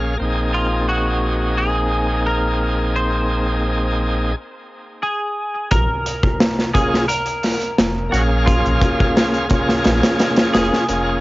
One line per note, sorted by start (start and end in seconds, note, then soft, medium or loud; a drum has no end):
0.00 0.16 A#1 medium
0.00 0.14 A#3 medium
0.00 0.16 C#4 medium
0.00 0.18 G#4 medium
0.00 0.17 F5 medium
0.17 4.34 A#1 medium
0.17 4.32 A#3 medium
0.17 4.33 C4 medium
0.22 4.35 D#4 medium
0.22 4.36 G#4 medium
0.54 0.88 F4 medium
0.89 1.54 F#4 medium
1.58 2.26 G#4 medium
2.27 2.96 A#4 medium
2.96 4.99 C5 loud
5.03 5.71 G#4 medium
5.71 5.87 A#1 loud
5.71 6.71 A#4 loud
5.71 kick loud
5.71 closed hi-hat medium
6.06 closed hi-hat medium
6.23 kick medium
6.40 snare loud
6.40 closed hi-hat medium
6.59 snare soft
6.74 7.05 A#3 medium
6.74 7.05 C#4 medium
6.74 7.06 F4 medium
6.74 7.08 G#4 loud
6.74 7.06 G#4 medium
6.74 kick loud
6.74 closed hi-hat medium
6.94 snare medium
7.08 8.15 A#4 loud
7.08 closed hi-hat medium
7.26 closed hi-hat soft
7.43 snare soft
7.43 open hi-hat medium
7.62 closed hi-hat soft
7.78 8.09 F1 medium
7.78 snare loud
7.78 closed hi-hat medium
8.09 8.62 A#1 medium
8.09 9.45 A#3 medium
8.09 9.46 C#4 medium
8.09 8.22 F#4 medium
8.14 9.49 G#4 medium
8.14 9.47 F5 medium
8.14 closed hi-hat medium
8.46 10.60 F4 loud
8.46 kick loud
8.46 closed hi-hat medium
8.66 8.80 A#1 medium
8.66 closed hi-hat soft
8.82 kick loud
8.82 closed hi-hat medium
9.00 kick loud
9.17 snare loud
9.17 closed hi-hat medium
9.34 closed hi-hat soft
9.49 10.84 A#3 medium
9.49 10.85 C#4 medium
9.49 kick medium
9.49 closed hi-hat medium
9.53 10.86 F4 medium
9.53 10.87 G#4 loud
9.69 snare soft
9.84 10.01 A#1 medium
9.84 snare medium
9.84 closed hi-hat medium
10.03 snare loud
10.03 closed hi-hat medium
10.19 snare medium
10.19 closed hi-hat medium
10.36 snare loud
10.36 closed hi-hat medium
10.53 10.70 F1 medium
10.53 11.19 G#4 medium
10.53 snare loud
10.53 closed hi-hat medium
10.73 snare soft
10.89 11.19 F1 medium
10.89 11.19 A#3 medium
10.89 11.19 C#4 medium
10.89 11.20 F4 medium
10.89 11.20 G#4 medium
10.89 closed hi-hat medium